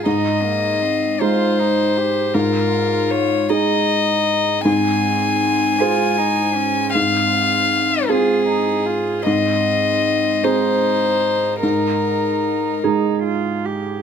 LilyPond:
<<
  \new Staff \with { instrumentName = "Violin" } { \time 6/8 \key aes \major \tempo 4. = 52 ees''4. c''4. | bes'4 des''8 ees''4. | aes''2. | f''4. aes'4. |
ees''4. c''4. | bes'4. r4. | }
  \new Staff \with { instrumentName = "Cello" } { \time 6/8 \key aes \major ees'8 bes8 c'8 f'8 ees'8 g'8 | f'4. ees'4. | c'4. f'8 ees'8 des'8 | c'4. f'8 ees'8 f'8 |
c'4. ees'4. | ees'4. ees'8 f'8 g'8 | }
  \new Staff \with { instrumentName = "Felt piano" } { \time 6/8 \key aes \major aes,4. <aes ees'>4. | aes,4. <ees' aes'>4. | aes,4. <aes' c''>4. | aes,4. <c' aes'>4. |
aes,4. <c' aes'>4. | aes,4. <aes ees' aes'>4. | }
>>